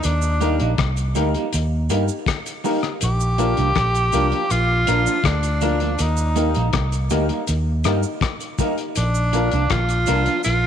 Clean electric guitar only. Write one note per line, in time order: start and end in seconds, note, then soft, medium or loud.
0.41 0.54 G3 medium
0.41 0.55 A#3 medium
0.41 0.55 D#4 medium
0.59 0.70 G3 medium
0.59 0.70 A#3 medium
0.59 0.70 D#4 medium
1.15 1.29 G3 medium
1.15 1.29 A#3 medium
1.15 1.29 D#4 medium
1.35 1.45 G3 soft
1.35 1.45 A#3 soft
1.35 1.45 D#4 medium
1.90 2.03 G3 medium
1.90 2.04 A#3 medium
1.90 2.04 D#4 medium
2.64 2.78 G3 medium
2.64 2.78 A#3 medium
2.64 2.78 D#4 medium
3.38 3.52 F3 medium
3.38 3.52 A#3 medium
3.38 3.52 D4 medium
3.57 3.68 F3 medium
3.57 3.68 A#3 medium
3.57 3.67 D4 medium
4.13 4.26 F3 medium
4.13 4.26 A#3 medium
4.13 4.27 D4 medium
4.32 4.43 F3 soft
4.32 4.42 A#3 medium
4.32 4.42 D4 medium
4.87 5.01 F3 medium
4.87 5.01 A#3 medium
4.87 5.01 D4 medium
5.06 5.17 F3 medium
5.06 5.17 A#3 medium
5.06 5.17 D4 medium
5.62 5.75 F3 medium
5.62 5.75 A#3 medium
5.62 5.76 D4 medium
5.81 5.91 F3 soft
5.81 5.91 A#3 medium
5.81 5.91 D4 medium
6.36 6.49 G3 medium
6.36 6.50 A#3 medium
6.36 6.50 D#4 medium
6.55 6.66 G3 soft
6.55 6.66 A#3 medium
6.55 6.65 D#4 medium
7.11 7.24 G3 medium
7.11 7.24 A#3 medium
7.11 7.24 D#4 medium
7.30 7.40 G3 soft
7.30 7.40 A#3 medium
7.30 7.40 D#4 medium
7.85 7.98 G3 medium
7.85 7.99 A#3 medium
7.85 7.99 D#4 medium
8.59 8.73 G3 medium
8.59 8.73 A#3 medium
8.59 8.73 D#4 medium
9.33 9.46 F3 medium
9.33 9.47 A#3 medium
9.33 9.47 D4 medium
9.52 9.63 F3 soft
9.52 9.63 A#3 medium
9.52 9.62 D4 medium
10.07 10.21 F3 medium
10.07 10.21 A#3 medium
10.07 10.21 D4 medium
10.26 10.37 F3 soft
10.26 10.37 A#3 medium
10.26 10.37 D4 medium